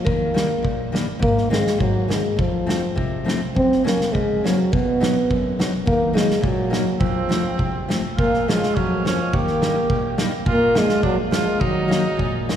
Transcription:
0.05 0.33 D#3 medium
0.05 0.93 A#3 medium
0.05 kick medium
0.34 0.47 D#3 medium
0.34 0.48 G3 medium
0.34 0.48 A#3 medium
0.34 snare medium
0.63 1.06 A#2 medium
0.63 kick medium
0.92 1.05 D#3 medium
0.92 1.05 G3 medium
0.92 1.06 A#3 medium
0.92 snare medium
1.19 1.63 G#2 medium
1.19 1.49 A#3 loud
1.19 kick medium
1.38 snare soft
1.50 1.63 D#3 medium
1.50 1.63 G#3 medium
1.50 1.78 G#3 medium
1.50 1.64 C4 medium
1.50 snare medium
1.67 snare medium
1.78 2.22 G#2 medium
1.78 2.08 F#3 medium
1.78 kick medium
2.08 2.21 D#3 medium
2.08 2.22 G#3 soft
2.08 2.37 G#3 medium
2.08 2.22 C4 medium
2.08 snare medium
2.37 2.81 F2 medium
2.37 3.25 F3 medium
2.37 kick medium
2.66 2.80 F3 medium
2.66 2.80 A3 medium
2.66 2.80 C4 medium
2.66 snare medium
2.95 3.40 C3 medium
2.95 kick medium
3.25 3.39 F3 medium
3.25 3.39 A3 medium
3.25 3.39 C4 medium
3.25 snare medium
3.55 3.99 F#2 medium
3.55 3.84 C4 loud
3.55 kick medium
3.72 snare soft
3.84 3.98 F#3 medium
3.84 3.98 A#3 medium
3.84 4.14 A#3 medium
3.84 3.98 C#4 medium
3.84 snare medium
4.01 snare medium
4.13 4.57 C#3 medium
4.13 4.47 G#3 medium
4.13 kick medium
4.44 4.57 F#3 medium
4.44 4.75 F#3 medium
4.44 4.57 A#3 soft
4.44 4.57 C#4 medium
4.44 snare medium
4.72 5.15 B2 medium
4.72 5.60 B3 medium
4.72 kick medium
5.00 5.14 F#3 medium
5.00 5.14 B3 medium
5.00 5.14 D#4 medium
5.00 snare medium
5.30 5.72 F#2 medium
5.30 kick medium
5.59 5.71 F#3 medium
5.59 5.72 B3 medium
5.59 5.71 D#4 medium
5.59 snare medium
5.86 6.28 D#3 medium
5.86 6.17 A#3 loud
5.86 kick medium
6.13 6.27 F#3 medium
6.13 6.43 G#3 medium
6.13 6.27 A#3 medium
6.13 6.27 D#4 medium
6.13 snare medium
6.31 snare medium
6.41 6.84 A#2 medium
6.41 7.02 F#3 medium
6.41 kick medium
6.70 6.83 F#3 medium
6.70 6.83 A#3 soft
6.70 6.84 D#4 medium
6.70 snare medium
7.00 7.43 F2 medium
7.00 7.88 F3 medium
7.00 7.88 C4 medium
7.00 kick medium
7.29 7.42 F3 medium
7.29 7.42 A3 medium
7.29 7.42 C4 medium
7.29 snare medium
7.58 8.02 C3 medium
7.58 kick medium
7.88 8.01 F3 medium
7.88 8.01 A3 soft
7.88 8.01 C4 medium
7.88 snare medium
8.15 8.61 A#2 medium
8.15 8.50 A#3 loud
8.15 8.49 F4 medium
8.15 kick medium
8.34 snare soft
8.48 8.60 F3 medium
8.48 8.78 G#3 medium
8.48 8.61 A#3 medium
8.48 8.61 C#4 medium
8.48 8.76 F4 medium
8.48 snare medium
8.63 snare medium
8.75 9.18 F2 medium
8.75 9.06 F#3 medium
8.75 9.04 C#4 medium
8.75 kick medium
9.05 9.17 F3 soft
9.05 9.37 F3 medium
9.05 9.17 A#3 medium
9.05 9.18 C#4 medium
9.05 9.37 C#4 medium
9.05 snare medium
9.33 9.75 D#3 medium
9.33 10.20 A#3 medium
9.33 10.20 G4 medium
9.33 kick medium
9.47 snare soft
9.62 9.74 G3 medium
9.62 9.74 A#3 medium
9.62 9.74 D#4 medium
9.62 snare medium
9.90 10.32 A#2 medium
9.90 kick medium
10.18 10.30 G3 medium
10.18 10.30 A#3 medium
10.18 10.31 D#4 medium
10.18 snare medium
10.46 10.89 A#2 medium
10.46 10.77 F4 loud
10.46 kick medium
10.50 10.80 A#3 loud
10.75 10.88 F3 medium
10.75 11.04 G#3 medium
10.75 10.88 A#3 medium
10.75 10.88 D4 medium
10.75 11.02 F4 medium
10.75 snare medium
10.89 snare medium
11.03 11.46 F2 medium
11.03 11.18 F#3 medium
11.03 11.16 D4 medium
11.03 kick medium
11.31 11.44 F3 medium
11.31 11.64 G#3 medium
11.31 11.45 A#3 medium
11.31 11.45 D4 medium
11.31 11.62 F4 medium
11.31 snare medium
11.60 12.03 D#3 medium
11.60 12.50 F#3 medium
11.60 12.49 D#4 medium
11.60 kick medium
11.88 12.02 F#3 medium
11.88 12.02 A#3 medium
11.88 12.02 D#4 medium
11.88 snare medium
12.17 12.56 A#2 medium
12.17 kick medium
12.49 12.56 F#3 medium
12.49 12.56 A#3 medium
12.49 12.56 D#4 medium
12.49 snare medium

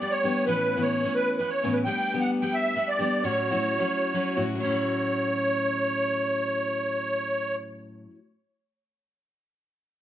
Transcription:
0.00 0.24 G3 medium
0.00 0.24 B3 medium
0.00 0.23 D4 medium
0.00 0.22 G4 medium
0.00 0.13 D5 loud
0.11 0.45 C#5 loud
0.24 0.47 G3 medium
0.24 0.47 B3 medium
0.24 0.48 D4 medium
0.24 0.48 G4 medium
0.46 0.76 A2 medium
0.46 0.76 E3 medium
0.46 0.76 B3 medium
0.46 0.75 C#4 medium
0.46 0.75 E4 medium
0.46 0.83 B4 loud
0.76 1.05 A2 medium
0.76 1.03 E3 medium
0.76 1.04 B3 medium
0.76 1.04 C#4 medium
0.76 1.05 E4 medium
0.81 1.14 C#5 loud
1.04 1.38 E3 medium
1.04 1.39 B3 medium
1.04 1.39 C#4 medium
1.04 1.40 E4 medium
1.15 1.36 B4 loud
1.37 1.63 E3 medium
1.37 1.63 B3 medium
1.37 1.62 C#4 medium
1.37 1.50 B4 medium
1.41 1.62 E4 medium
1.50 1.73 C#5 loud
1.63 1.87 A2 medium
1.63 1.86 E3 medium
1.63 1.86 B3 medium
1.63 1.87 C#4 medium
1.63 1.87 E4 medium
1.73 1.79 B4 medium
1.85 2.14 G3 medium
1.85 2.13 B3 medium
1.85 2.13 D4 medium
1.85 2.13 G4 medium
1.85 2.21 G5 loud
2.14 2.41 G3 medium
2.14 2.41 B3 medium
2.14 2.42 D4 medium
2.14 2.42 G4 medium
2.21 2.31 F#5 loud
2.41 2.74 G3 medium
2.41 2.75 B3 medium
2.41 2.76 D4 medium
2.41 2.76 G4 medium
2.41 2.55 G5 loud
2.53 2.90 E5 loud
2.76 2.99 G3 medium
2.76 2.99 B3 medium
2.76 2.98 D4 medium
2.76 2.98 G4 medium
2.88 3.24 D5 loud
2.99 3.23 G3 medium
2.99 3.24 B3 medium
2.99 3.23 D4 medium
2.99 3.23 G4 medium
3.23 3.51 A2 medium
3.23 3.51 F#3 medium
3.23 3.51 C#4 medium
3.23 3.50 E4 medium
3.23 3.50 F#4 medium
3.23 4.44 C#5 loud
3.51 3.80 A2 medium
3.51 3.77 F#3 medium
3.51 3.78 C#4 medium
3.51 3.78 E4 medium
3.51 3.79 F#4 medium
3.79 4.13 F#3 medium
3.79 4.14 C#4 medium
3.79 4.14 E4 medium
3.79 4.15 F#4 medium
4.14 4.36 F#3 medium
4.14 4.36 C#4 medium
4.14 4.35 E4 medium
4.14 4.36 F#4 medium
4.36 4.54 A2 medium
4.36 4.59 F#3 medium
4.36 4.61 C#4 medium
4.36 4.60 E4 medium
4.36 4.60 F#4 medium
4.55 8.05 A2 medium
4.59 8.10 F#3 medium
4.59 7.56 C#5 loud
4.64 8.14 C#4 medium
4.69 8.19 E4 medium
4.69 8.22 F#4 medium

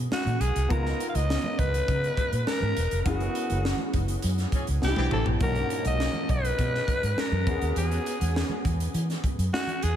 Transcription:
0.00 0.36 B3 medium
0.00 0.36 C#4 medium
0.00 0.37 F#4 medium
0.00 0.37 G#4 medium
0.11 0.42 F#4 loud
0.11 snare loud
0.11 muted conga soft
0.11 high conga medium
0.25 0.36 A#2 medium
0.25 closed hi-hat soft
0.25 muted conga soft
0.25 low conga medium
0.40 0.51 B1 medium
0.40 0.70 G#4 loud
0.40 closed hi-hat medium
0.56 0.66 C2 medium
0.56 closed hi-hat medium
0.69 0.91 C#2 medium
0.69 3.01 B3 medium
0.69 3.01 D#4 medium
0.69 3.02 F4 medium
0.69 1.05 A#4 medium
0.69 3.02 A#5 medium
0.69 kick loud
0.69 closed hi-hat medium
0.69 low conga medium
0.85 snare soft
0.85 muted conga soft
1.00 closed hi-hat medium
1.09 1.17 F5 medium
1.15 1.36 C#2 loud
1.15 1.61 D#5 loud
1.15 closed hi-hat medium
1.15 high conga medium
1.30 snare loud
1.44 high conga medium
1.44 low conga medium
1.59 1.80 C#2 medium
1.59 2.47 B4 loud
1.59 kick medium
1.59 closed hi-hat medium
1.74 closed hi-hat medium
1.88 2.09 C#3 loud
1.88 kick loud
1.88 closed hi-hat medium
1.88 muted conga soft
2.03 closed hi-hat soft
2.03 muted conga soft
2.17 kick medium
2.17 closed hi-hat medium
2.33 2.43 A#2 medium
2.33 closed hi-hat medium
2.47 3.02 A#4 loud
2.47 snare loud
2.47 muted conga soft
2.47 high conga medium
2.60 2.72 G#2 loud
2.60 muted conga soft
2.60 low conga medium
2.77 2.87 E1 medium
2.77 closed hi-hat medium
2.91 3.02 F1 medium
2.91 closed hi-hat medium
3.05 3.27 F#1 loud
3.05 4.78 B3 medium
3.05 4.78 C#4 medium
3.05 4.79 E4 medium
3.05 3.91 F#4 medium
3.05 4.79 G#4 medium
3.05 kick loud
3.05 closed hi-hat medium
3.05 low conga medium
3.20 closed hi-hat soft
3.20 muted conga soft
3.35 closed hi-hat medium
3.50 3.72 F#1 loud
3.50 closed hi-hat medium
3.50 high conga medium
3.63 snare loud
3.63 muted conga soft
3.77 high conga medium
3.77 low conga medium
3.93 4.15 F#1 loud
3.93 kick medium
3.93 closed hi-hat medium
4.08 closed hi-hat medium
4.22 4.45 F#2 loud
4.22 closed hi-hat medium
4.38 snare soft
4.38 closed hi-hat soft
4.52 4.66 E3 medium
4.52 4.66 C#4 medium
4.52 4.65 G#4 medium
4.52 kick medium
4.52 closed hi-hat medium
4.67 4.79 C#2 medium
4.67 closed hi-hat medium
4.81 4.93 C2 loud
4.81 5.41 B3 medium
4.81 5.41 D4 medium
4.81 4.89 D#4 soft
4.81 5.41 G4 medium
4.81 5.10 G4 medium
4.81 snare medium
4.81 high conga medium
4.89 5.44 E4 medium
4.96 5.08 B1 medium
4.96 5.06 E3 medium
4.96 5.06 C4 medium
4.96 5.06 G4 loud
4.96 high tom medium
4.96 muted conga soft
4.96 low conga medium
5.11 5.22 A1 medium
5.11 5.30 E3 medium
5.11 5.30 C4 medium
5.11 5.30 G4 loud
5.11 5.26 A4 medium
5.11 mid tom medium
5.26 5.37 A#1 medium
5.26 floor tom loud
5.40 5.62 B1 medium
5.40 7.42 A#2 medium
5.40 7.43 C#4 medium
5.40 7.43 D#4 medium
5.40 7.43 F#4 medium
5.40 5.83 A#4 loud
5.40 kick loud
5.40 closed hi-hat medium
5.40 muted conga soft
5.40 low conga medium
5.55 closed hi-hat soft
5.70 closed hi-hat medium
5.85 6.06 B1 loud
5.85 6.32 D#5 loud
5.85 closed hi-hat medium
5.85 high conga medium
6.00 snare loud
6.00 muted conga soft
6.14 muted conga soft
6.14 high conga medium
6.14 low conga medium
6.29 6.50 B1 medium
6.29 7.21 B4 loud
6.29 kick medium
6.29 closed hi-hat medium
6.45 closed hi-hat medium
6.59 6.80 B2 loud
6.59 kick medium
6.59 closed hi-hat medium
6.75 snare soft
6.88 kick medium
6.88 closed hi-hat medium
7.03 7.14 G#2 medium
7.03 closed hi-hat medium
7.16 7.77 A#4 loud
7.16 snare loud
7.16 muted conga soft
7.16 high conga medium
7.31 7.47 F#2 medium
7.31 muted conga soft
7.31 low conga medium
7.47 7.58 E2 loud
7.47 9.78 B3 medium
7.47 9.78 C#4 medium
7.47 9.79 F#4 medium
7.47 9.79 G#4 medium
7.47 kick loud
7.47 closed hi-hat medium
7.61 7.72 D#2 medium
7.61 closed hi-hat medium
7.76 7.97 E2 loud
7.76 8.61 G#4 medium
7.76 closed hi-hat medium
7.76 muted conga soft
7.76 low conga medium
7.91 closed hi-hat soft
7.91 muted conga soft
8.06 closed hi-hat medium
8.21 8.42 E2 loud
8.21 closed hi-hat medium
8.21 high conga medium
8.35 snare loud
8.35 muted conga soft
8.49 high conga medium
8.49 low conga medium
8.65 8.86 E2 loud
8.65 kick medium
8.65 closed hi-hat medium
8.80 closed hi-hat medium
8.94 9.15 E3 loud
8.94 closed hi-hat medium
9.09 snare soft
9.09 closed hi-hat soft
9.09 muted conga soft
9.24 kick medium
9.24 closed hi-hat medium
9.38 9.49 F#2 medium
9.38 closed hi-hat medium
9.53 9.85 F#4 loud
9.53 snare loud
9.53 muted conga soft
9.53 high conga medium
9.67 closed hi-hat soft
9.67 low conga medium
9.83 9.96 E2 medium
9.83 9.96 G#4 loud
9.83 closed hi-hat medium

